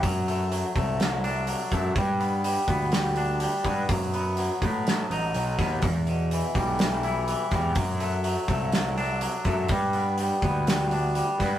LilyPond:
<<
  \new Staff \with { instrumentName = "Clean electric guitar" } { \clef bass \time 4/4 \key d \mixolydian \tempo 4 = 124 fis8 a8 fis8 a8 fis8 d'8 fis8 a8 | g8 b8 g8 b8 g8 d'8 g8 b8 | fis8 b8 fis8 b8 fis8 dis'8 fis8 b8 | e,8 b,8 e8 g8 e8 e'8 e8 g8 |
fis8 a8 fis8 a8 fis8 d'8 fis8 a8 | g8 b8 g8 b8 g8 d'8 g8 b8 | }
  \new Staff \with { instrumentName = "Picked electric bass" } { \clef bass \time 4/4 \key d \mixolydian fis,4. c,2 fis,8 | g,4. d,2 g,8 | fis,4. a,4 a,,8 b,,8 dis,8 | e,4. b,,2 e,8 |
fis,4. c,2 fis,8 | g,4. d,2 g,8 | }
  \new DrumStaff \with { instrumentName = "Drums" } \drummode { \time 4/4 <hho bd>8 hho8 hho8 <hho bd>8 <hho sn>8 hho8 hho8 <hho bd>8 | <hho bd>8 hho8 hho8 <hho bd>8 <hho sn>8 hho8 hho8 <hho bd>8 | <hho bd>8 hho8 hho8 <hho bd>8 <hho sn>8 hho8 hho8 <hho bd sn>8 | <hho bd>8 hho8 hho8 <hho bd>8 <hho sn>8 hho8 hho8 <hho bd sn>8 |
<hho bd>8 hho8 hho8 <hho bd>8 <hho sn>8 hho8 hho8 <hho bd>8 | <hho bd>8 hho8 hho8 <hho bd>8 <hho sn>8 hho8 hho8 <hho bd sn>8 | }
>>